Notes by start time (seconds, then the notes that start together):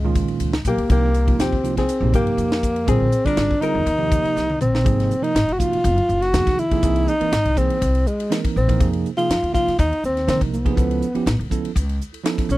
Already playing: C#2 G#3 F4
0.04 A#2 D#3 G#3 C#4 F4
0.15 kick, hi-hat pedal, ride
0.28 muted upright bass stroke, ride
0.40 C#2, hi-hat pedal, ride
0.53 snare
0.65 B1 A#3 C#4 F4 G4, kick, hi-hat pedal, ride
0.78 C#2, ride
0.89 C2 C3 F3 A#3 D#4 G4, kick, hi-hat pedal, ride
1.14 hi-hat pedal, ride
1.27 C3 F3 A#3 D#4 F4, kick, ride
1.39 D#2 C4 G4, snare, hi-hat pedal, ride
1.52 kick
1.63 C2 C3 F3 A#3 D#4 F4, hi-hat pedal, ride
1.77 C4 G#4, kick, snare, ride
1.89 A#4, hi-hat pedal, ride
2.00 A#1 C3 F3 A#3 D#4 G4
2.14 G2 A#3 G4, kick, hi-hat pedal, ride
2.27 ride
2.37 F2, hi-hat pedal, ride
2.52 snare
2.62 D#4 G4, kick, hi-hat pedal, ride
2.76 ride
2.86 A#1 D3 G3 C4 F4 G#4 A#4, kick, hi-hat pedal, ride
3.00 A#1
3.12 hi-hat pedal, ride
3.24 D3 G3 C4 D4 F4 G#4 A#4, muted upright bass stroke, kick, ride
3.36 G#1, snare, hi-hat pedal, ride
3.51 kick
3.61 D3 G3 C4 D#4 F4 G#4 A#4, muted upright bass stroke, hi-hat pedal, ride
3.75 F2
3.86 D#2, hi-hat pedal, ride
3.97 C3 F3 A#3 D#4 G4
4.12 kick, hi-hat pedal, ride
4.24 muted upright bass stroke, ride
4.36 C2, snare, hi-hat pedal
4.50 mid tom
4.59 A#1 C4 D#4 F4, hi-hat pedal, mid tom
4.75 snare
4.84 G#1 C3 F3 A#3 D#4 G#4, kick, hi-hat pedal, ride
5.00 snare, ride
5.11 hi-hat pedal
5.22 C3 F3 A#3 D#4 A#4, ride
5.35 G#1, snare, hi-hat pedal, ride
5.48 F#1 F#4, ride
5.52 F#4
5.59 C3 F3 A#3 D#4 F4 F#4, kick, hi-hat pedal
5.73 muted upright bass stroke, ride
5.84 F#1, kick, hi-hat pedal, ride
5.98 ride
6.09 F#1, hi-hat pedal
6.22 D#4 F#4 A#4, snare, ride
6.33 F2 C3 F3 A#3 D#4 G#4, snare, hi-hat pedal, ride
6.47 D#2, kick, snare, ride
6.58 E4, hi-hat pedal
6.71 C3 F3 A#3 D#4 G#4, muted upright bass stroke, kick, ride
6.83 C2 E3 A#3 C4 D#4 G#4, kick, hi-hat pedal, ride
6.96 ride
7.08 D#4, hi-hat pedal
7.20 E3 A#3 C4 D#4 A#4, muted upright bass stroke, ride
7.32 G#1, snare, hi-hat pedal, ride
7.45 C2 D#4 A#4, ride
7.57 E3 A#3 C4 D#4 G#4, kick, hi-hat pedal
7.70 ride
7.81 C2 F#4, kick, hi-hat pedal, ride
7.95 ride
8.06 G#3, hi-hat pedal
8.19 D#4 F#4, ride
8.30 E3 A#3 C4 D#4 A#4, snare, hi-hat pedal, ride
8.45 kick, ride
8.56 A#1 C4, hi-hat pedal
8.68 E3 A#3 C4 D#4 A#4, kick, ride
8.79 F2 C3 F3 A#3 D#4 G#4, kick, hi-hat pedal, ride
8.93 ride
9.05 hi-hat pedal
9.17 C3 F3 A#3 D#4 F4 G#4, ride
9.28 F2 D#4 G#4, snare, hi-hat pedal, ride
9.41 D#2 D#4 G#4, ride
9.52 C3 F3 A#3 D#4 F4, kick, hi-hat pedal
9.68 muted upright bass stroke, snare, ride
9.79 D#2 D#4, kick, hi-hat pedal, ride
9.93 ride
10.04 D#2 C4, hi-hat pedal
10.15 D#4 G#4, snare, ride
10.27 C3 D#3 F3 A#3 C4 D#4 A#4, snare, hi-hat pedal, ride
10.41 C2, kick, ride
10.53 B3, hi-hat pedal
10.65 C3 F3 A#3 D#4 G#4, muted upright bass stroke, kick, ride
10.75 C#2 F3 B3 C#4 E4 A4, kick, hi-hat pedal, ride
10.91 ride
11.02 hi-hat pedal
11.15 F3 B3 C#4 E4 G4, muted upright bass stroke, ride
11.26 A1 E4, snare, hi-hat pedal, ride
11.39 C#2 E4 A4, ride
11.50 F3 B3 C#4 E4 A4, kick, hi-hat pedal
11.65 ride
11.75 C#2, kick, hi-hat pedal, ride
11.89 ride
12.01 hi-hat pedal
12.13 E4 A4, ride
12.24 F3 B3 C#4 E4 A4, snare, hi-hat pedal, ride
12.38 kick, snare, ride
12.49 B1 C#4, hi-hat pedal